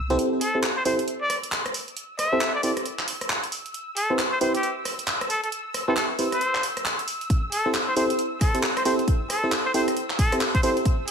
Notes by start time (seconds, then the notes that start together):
Already playing: C2 E6
0.10 C4 E4 G4 A4 C5, closed hi-hat
0.19 E6, closed hi-hat
0.41 A4, open hi-hat
0.55 C4 E4 G4 A4 C5
0.63 clap, closed hi-hat
0.77 C5
0.85 C4 E4 G4 A4 C5, open hi-hat
0.99 closed hi-hat
1.08 closed hi-hat
1.21 D5
1.30 cross-stick, open hi-hat
1.43 closed hi-hat
1.52 clap
1.66 cross-stick, closed hi-hat
1.74 open hi-hat
1.88 closed hi-hat
1.97 closed hi-hat
2.19 E5, cross-stick, open hi-hat
2.32 C4 E4 G4 A4 C5
2.41 clap, closed hi-hat
2.55 D5
2.63 C4 E4 G4 A4 C5 D5, open hi-hat
2.77 cross-stick, closed hi-hat
2.86 closed hi-hat
2.99 clap
3.08 open hi-hat
3.21 cross-stick, closed hi-hat
3.30 clap
3.43 closed hi-hat
3.52 open hi-hat
3.66 closed hi-hat
3.74 closed hi-hat
3.97 A4, open hi-hat
4.10 C4 E4 G4 B4 C5
4.19 clap, closed hi-hat
4.32 C5
4.41 C4 E4 G4 B4 C5, open hi-hat
4.54 G4, closed hi-hat
4.63 closed hi-hat
4.85 cross-stick, open hi-hat
4.99 closed hi-hat
5.08 clap
5.21 cross-stick, closed hi-hat
5.30 A4, open hi-hat
5.43 A4, closed hi-hat
5.52 closed hi-hat
5.74 cross-stick, open hi-hat
5.88 C4 E4 G4 A4 B4 C5
5.96 A4, clap, closed hi-hat
6.19 C4 E4 G4 B4 C5, open hi-hat
6.32 C5, cross-stick, closed hi-hat
6.41 closed hi-hat
6.55 clap
6.63 open hi-hat
6.77 cross-stick, closed hi-hat
6.86 clap
6.99 closed hi-hat
7.08 open hi-hat
7.21 closed hi-hat
7.30 kick, closed hi-hat
7.52 A4, open hi-hat
7.66 C4 E4 G4 A4 C5
7.74 clap, closed hi-hat
7.88 C5
7.96 C4 E4 G4 A4 C5, open hi-hat
8.10 closed hi-hat
8.19 closed hi-hat
8.41 A4, kick, cross-stick, open hi-hat
8.55 C4 E4 G4 A4 C5, closed hi-hat
8.63 clap
8.77 C5, cross-stick, closed hi-hat
8.85 C4 E4 G4 A4 C5, open hi-hat
8.99 closed hi-hat
9.08 kick, closed hi-hat
9.30 A4, cross-stick, open hi-hat
9.44 C4 E4 G4 A4 C5
9.52 clap, closed hi-hat
9.66 C5
9.74 C4 E4 G4 A4 C5, open hi-hat
9.88 cross-stick, closed hi-hat
9.97 closed hi-hat
10.10 clap
10.19 A4, kick, open hi-hat
10.32 C4 E4 G4 A4 C5, cross-stick, closed hi-hat
10.41 clap
10.55 C5, kick, closed hi-hat
10.63 C4 E4 G4 A4 C5, open hi-hat
10.77 closed hi-hat
10.85 kick, closed hi-hat
11.08 A4, open hi-hat